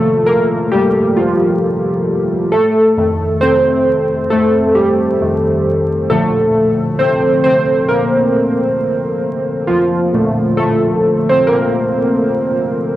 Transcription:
0, 0, Header, 1, 2, 480
1, 0, Start_track
1, 0, Key_signature, -2, "major"
1, 0, Tempo, 895522
1, 1349, Time_signature, 4, 2, 24, 8
1, 6949, End_track
2, 0, Start_track
2, 0, Title_t, "Synth keys"
2, 0, Program_c, 0, 88
2, 0, Control_c, 0, 64, 127
2, 0, Note_on_c, 0, 48, 47
2, 0, Note_on_c, 0, 51, 45
2, 0, Note_on_c, 0, 53, 73
2, 0, Note_on_c, 0, 57, 80
2, 0, Note_on_c, 0, 58, 57
2, 0, Note_on_c, 0, 65, 88
2, 0, Note_on_c, 0, 69, 96
2, 143, Note_on_c, 0, 70, 104
2, 151, Note_off_c, 0, 58, 0
2, 157, Note_on_c, 0, 58, 70
2, 376, Note_off_c, 0, 58, 0
2, 384, Note_on_c, 0, 67, 105
2, 393, Note_off_c, 0, 70, 0
2, 399, Note_on_c, 0, 55, 76
2, 617, Note_off_c, 0, 55, 0
2, 625, Note_off_c, 0, 65, 0
2, 625, Note_on_c, 0, 65, 80
2, 634, Note_off_c, 0, 67, 0
2, 639, Note_off_c, 0, 53, 0
2, 639, Note_on_c, 0, 53, 66
2, 1085, Note_off_c, 0, 65, 0
2, 1092, Note_off_c, 0, 53, 0
2, 1328, Note_off_c, 0, 48, 0
2, 1329, Note_off_c, 0, 51, 0
2, 1350, Note_off_c, 0, 69, 0
2, 1350, Note_on_c, 0, 69, 106
2, 1356, Control_c, 0, 64, 0
2, 1359, Note_off_c, 0, 57, 0
2, 1359, Note_on_c, 0, 57, 74
2, 1453, Control_c, 0, 64, 127
2, 1592, Note_off_c, 0, 57, 0
2, 1592, Note_on_c, 0, 41, 53
2, 1596, Note_on_c, 0, 51, 47
2, 1599, Note_on_c, 0, 57, 58
2, 1827, Note_on_c, 0, 72, 109
2, 1837, Note_on_c, 0, 60, 84
2, 1844, Note_off_c, 0, 69, 0
2, 2291, Note_off_c, 0, 60, 0
2, 2306, Note_on_c, 0, 69, 99
2, 2312, Note_off_c, 0, 57, 0
2, 2318, Note_on_c, 0, 57, 79
2, 2322, Note_off_c, 0, 72, 0
2, 2530, Note_off_c, 0, 69, 0
2, 2537, Note_off_c, 0, 57, 0
2, 2545, Note_on_c, 0, 67, 81
2, 2557, Note_on_c, 0, 55, 58
2, 2785, Note_off_c, 0, 41, 0
2, 2787, Note_off_c, 0, 51, 0
2, 2792, Note_on_c, 0, 41, 48
2, 2794, Note_on_c, 0, 51, 43
2, 2796, Note_on_c, 0, 57, 49
2, 3005, Note_off_c, 0, 67, 0
2, 3009, Note_off_c, 0, 41, 0
2, 3010, Note_off_c, 0, 51, 0
2, 3011, Note_off_c, 0, 57, 0
2, 3012, Note_off_c, 0, 55, 0
2, 3268, Note_on_c, 0, 69, 104
2, 3271, Note_on_c, 0, 46, 54
2, 3275, Note_on_c, 0, 50, 56
2, 3276, Control_c, 0, 64, 0
2, 3277, Note_on_c, 0, 53, 67
2, 3278, Note_on_c, 0, 57, 75
2, 3378, Control_c, 0, 64, 127
2, 3732, Note_off_c, 0, 57, 0
2, 3747, Note_on_c, 0, 72, 102
2, 3757, Note_on_c, 0, 60, 77
2, 3763, Note_off_c, 0, 69, 0
2, 3971, Note_off_c, 0, 72, 0
2, 3976, Note_off_c, 0, 60, 0
2, 3987, Note_on_c, 0, 72, 104
2, 3998, Note_on_c, 0, 60, 74
2, 4217, Note_off_c, 0, 60, 0
2, 4225, Note_on_c, 0, 70, 94
2, 4235, Note_off_c, 0, 72, 0
2, 4238, Note_on_c, 0, 58, 66
2, 4925, Note_off_c, 0, 70, 0
2, 4932, Note_off_c, 0, 58, 0
2, 5168, Note_off_c, 0, 46, 0
2, 5170, Note_off_c, 0, 50, 0
2, 5171, Note_off_c, 0, 53, 0
2, 5185, Note_on_c, 0, 65, 86
2, 5197, Note_on_c, 0, 53, 69
2, 5430, Note_on_c, 0, 46, 52
2, 5434, Note_on_c, 0, 50, 49
2, 5437, Note_on_c, 0, 57, 63
2, 5651, Note_off_c, 0, 53, 0
2, 5665, Note_on_c, 0, 69, 91
2, 5671, Note_off_c, 0, 57, 0
2, 5678, Note_on_c, 0, 57, 78
2, 5681, Note_off_c, 0, 65, 0
2, 6036, Note_off_c, 0, 57, 0
2, 6052, Note_on_c, 0, 72, 95
2, 6063, Note_off_c, 0, 69, 0
2, 6064, Note_on_c, 0, 60, 79
2, 6128, Note_off_c, 0, 46, 0
2, 6130, Note_off_c, 0, 50, 0
2, 6147, Note_on_c, 0, 70, 99
2, 6148, Note_off_c, 0, 60, 0
2, 6151, Note_off_c, 0, 72, 0
2, 6158, Note_on_c, 0, 58, 77
2, 6846, Note_off_c, 0, 70, 0
2, 6852, Note_off_c, 0, 58, 0
2, 6949, End_track
0, 0, End_of_file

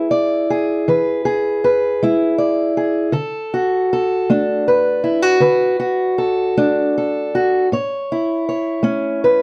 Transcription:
0, 0, Header, 1, 2, 480
1, 0, Start_track
1, 0, Tempo, 760456
1, 1988, Time_signature, 12, 3, 24, 8
1, 5947, End_track
2, 0, Start_track
2, 0, Title_t, "Steel-string acoustic guitar"
2, 0, Program_c, 0, 25
2, 0, Note_on_c, 0, 56, 67
2, 0, Note_on_c, 0, 64, 59
2, 0, Note_on_c, 0, 68, 51
2, 0, Note_on_c, 0, 71, 54
2, 66, Note_off_c, 0, 71, 0
2, 68, Note_on_c, 0, 74, 69
2, 258, Note_off_c, 0, 56, 0
2, 305, Note_off_c, 0, 68, 0
2, 318, Note_on_c, 0, 68, 56
2, 548, Note_off_c, 0, 74, 0
2, 555, Note_on_c, 0, 52, 70
2, 559, Note_on_c, 0, 71, 60
2, 782, Note_off_c, 0, 68, 0
2, 790, Note_on_c, 0, 68, 64
2, 983, Note_off_c, 0, 52, 0
2, 1029, Note_off_c, 0, 71, 0
2, 1037, Note_on_c, 0, 71, 66
2, 1265, Note_off_c, 0, 64, 0
2, 1278, Note_on_c, 0, 56, 70
2, 1283, Note_on_c, 0, 64, 66
2, 1502, Note_off_c, 0, 71, 0
2, 1504, Note_on_c, 0, 74, 62
2, 1705, Note_off_c, 0, 56, 0
2, 1741, Note_off_c, 0, 68, 0
2, 1749, Note_on_c, 0, 68, 61
2, 1957, Note_off_c, 0, 74, 0
2, 1959, Note_off_c, 0, 68, 0
2, 1967, Note_off_c, 0, 64, 0
2, 1971, Note_on_c, 0, 50, 70
2, 1975, Note_on_c, 0, 69, 68
2, 2232, Note_on_c, 0, 66, 59
2, 2412, Note_off_c, 0, 50, 0
2, 2477, Note_off_c, 0, 69, 0
2, 2479, Note_on_c, 0, 69, 62
2, 2712, Note_on_c, 0, 57, 68
2, 2716, Note_on_c, 0, 62, 58
2, 2950, Note_off_c, 0, 69, 0
2, 2953, Note_on_c, 0, 71, 62
2, 3142, Note_off_c, 0, 57, 0
2, 3177, Note_off_c, 0, 66, 0
2, 3179, Note_on_c, 0, 64, 63
2, 3297, Note_off_c, 0, 64, 0
2, 3297, Note_on_c, 0, 66, 53
2, 3406, Note_off_c, 0, 71, 0
2, 3410, Note_on_c, 0, 50, 67
2, 3413, Note_on_c, 0, 71, 60
2, 3650, Note_off_c, 0, 66, 0
2, 3658, Note_on_c, 0, 66, 67
2, 3852, Note_off_c, 0, 50, 0
2, 3900, Note_off_c, 0, 71, 0
2, 3902, Note_on_c, 0, 69, 63
2, 4141, Note_off_c, 0, 62, 0
2, 4149, Note_on_c, 0, 57, 70
2, 4150, Note_on_c, 0, 62, 62
2, 4401, Note_off_c, 0, 69, 0
2, 4404, Note_on_c, 0, 69, 59
2, 4582, Note_off_c, 0, 57, 0
2, 4625, Note_off_c, 0, 66, 0
2, 4638, Note_on_c, 0, 66, 68
2, 4841, Note_off_c, 0, 62, 0
2, 4846, Note_off_c, 0, 66, 0
2, 4873, Note_on_c, 0, 45, 70
2, 4877, Note_off_c, 0, 69, 0
2, 4880, Note_on_c, 0, 73, 68
2, 5124, Note_on_c, 0, 64, 57
2, 5305, Note_off_c, 0, 45, 0
2, 5349, Note_off_c, 0, 73, 0
2, 5357, Note_on_c, 0, 73, 55
2, 5572, Note_on_c, 0, 57, 60
2, 5578, Note_on_c, 0, 61, 64
2, 5830, Note_off_c, 0, 73, 0
2, 5833, Note_on_c, 0, 71, 65
2, 5947, Note_off_c, 0, 57, 0
2, 5947, Note_off_c, 0, 61, 0
2, 5947, Note_off_c, 0, 64, 0
2, 5947, Note_off_c, 0, 71, 0
2, 5947, End_track
0, 0, End_of_file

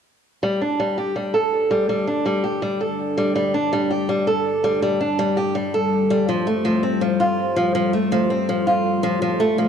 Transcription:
0, 0, Header, 1, 3, 480
1, 0, Start_track
1, 0, Tempo, 731707
1, 289, Time_signature, 4, 2, 24, 8
1, 6353, End_track
2, 0, Start_track
2, 0, Title_t, "Analog synth pad"
2, 0, Program_c, 0, 89
2, 279, Note_on_c, 0, 62, 65
2, 280, Note_on_c, 0, 74, 81
2, 281, Note_on_c, 0, 55, 70
2, 281, Note_on_c, 0, 69, 65
2, 4097, Note_off_c, 0, 62, 0
2, 4098, Note_off_c, 0, 74, 0
2, 4126, Note_on_c, 0, 65, 67
2, 4126, Note_on_c, 0, 72, 82
2, 6028, Note_off_c, 0, 72, 0
2, 6051, Note_on_c, 0, 74, 80
2, 6353, Note_off_c, 0, 55, 0
2, 6353, Note_off_c, 0, 65, 0
2, 6353, Note_off_c, 0, 69, 0
2, 6353, Note_off_c, 0, 74, 0
2, 6353, End_track
3, 0, Start_track
3, 0, Title_t, "Steel-string acoustic guitar"
3, 0, Program_c, 1, 25
3, 281, Note_on_c, 1, 55, 84
3, 393, Note_off_c, 1, 55, 0
3, 403, Note_on_c, 1, 62, 59
3, 514, Note_off_c, 1, 62, 0
3, 522, Note_on_c, 1, 55, 75
3, 633, Note_off_c, 1, 55, 0
3, 641, Note_on_c, 1, 67, 59
3, 753, Note_off_c, 1, 67, 0
3, 759, Note_on_c, 1, 55, 66
3, 872, Note_off_c, 1, 55, 0
3, 878, Note_on_c, 1, 69, 67
3, 1111, Note_off_c, 1, 69, 0
3, 1120, Note_on_c, 1, 55, 81
3, 1232, Note_off_c, 1, 55, 0
3, 1241, Note_on_c, 1, 55, 78
3, 1353, Note_off_c, 1, 55, 0
3, 1361, Note_on_c, 1, 62, 62
3, 1473, Note_off_c, 1, 62, 0
3, 1480, Note_on_c, 1, 55, 79
3, 1592, Note_off_c, 1, 55, 0
3, 1599, Note_on_c, 1, 67, 59
3, 1712, Note_off_c, 1, 67, 0
3, 1720, Note_on_c, 1, 55, 73
3, 1832, Note_off_c, 1, 55, 0
3, 1841, Note_on_c, 1, 69, 55
3, 2073, Note_off_c, 1, 69, 0
3, 2083, Note_on_c, 1, 55, 84
3, 2194, Note_off_c, 1, 55, 0
3, 2201, Note_on_c, 1, 55, 79
3, 2313, Note_off_c, 1, 55, 0
3, 2323, Note_on_c, 1, 62, 63
3, 2434, Note_off_c, 1, 62, 0
3, 2445, Note_on_c, 1, 55, 81
3, 2555, Note_off_c, 1, 55, 0
3, 2562, Note_on_c, 1, 67, 59
3, 2673, Note_off_c, 1, 67, 0
3, 2682, Note_on_c, 1, 55, 70
3, 2793, Note_off_c, 1, 55, 0
3, 2802, Note_on_c, 1, 69, 68
3, 3033, Note_off_c, 1, 69, 0
3, 3043, Note_on_c, 1, 55, 87
3, 3154, Note_off_c, 1, 55, 0
3, 3165, Note_on_c, 1, 55, 81
3, 3275, Note_off_c, 1, 55, 0
3, 3284, Note_on_c, 1, 62, 64
3, 3394, Note_off_c, 1, 62, 0
3, 3403, Note_on_c, 1, 55, 81
3, 3514, Note_off_c, 1, 55, 0
3, 3522, Note_on_c, 1, 67, 64
3, 3633, Note_off_c, 1, 67, 0
3, 3641, Note_on_c, 1, 55, 68
3, 3753, Note_off_c, 1, 55, 0
3, 3766, Note_on_c, 1, 69, 60
3, 3995, Note_off_c, 1, 69, 0
3, 4004, Note_on_c, 1, 55, 86
3, 4114, Note_off_c, 1, 55, 0
3, 4123, Note_on_c, 1, 53, 85
3, 4234, Note_off_c, 1, 53, 0
3, 4243, Note_on_c, 1, 57, 67
3, 4354, Note_off_c, 1, 57, 0
3, 4361, Note_on_c, 1, 53, 84
3, 4473, Note_off_c, 1, 53, 0
3, 4480, Note_on_c, 1, 60, 57
3, 4592, Note_off_c, 1, 60, 0
3, 4600, Note_on_c, 1, 53, 71
3, 4712, Note_off_c, 1, 53, 0
3, 4722, Note_on_c, 1, 65, 64
3, 4954, Note_off_c, 1, 65, 0
3, 4962, Note_on_c, 1, 53, 81
3, 5073, Note_off_c, 1, 53, 0
3, 5083, Note_on_c, 1, 53, 81
3, 5194, Note_off_c, 1, 53, 0
3, 5204, Note_on_c, 1, 57, 62
3, 5314, Note_off_c, 1, 57, 0
3, 5326, Note_on_c, 1, 53, 81
3, 5435, Note_off_c, 1, 53, 0
3, 5446, Note_on_c, 1, 60, 62
3, 5555, Note_off_c, 1, 60, 0
3, 5569, Note_on_c, 1, 53, 70
3, 5677, Note_off_c, 1, 53, 0
3, 5687, Note_on_c, 1, 65, 59
3, 5916, Note_off_c, 1, 65, 0
3, 5925, Note_on_c, 1, 53, 81
3, 6035, Note_off_c, 1, 53, 0
3, 6047, Note_on_c, 1, 53, 82
3, 6156, Note_off_c, 1, 53, 0
3, 6166, Note_on_c, 1, 57, 68
3, 6275, Note_off_c, 1, 57, 0
3, 6286, Note_on_c, 1, 53, 81
3, 6353, Note_off_c, 1, 53, 0
3, 6353, End_track
0, 0, End_of_file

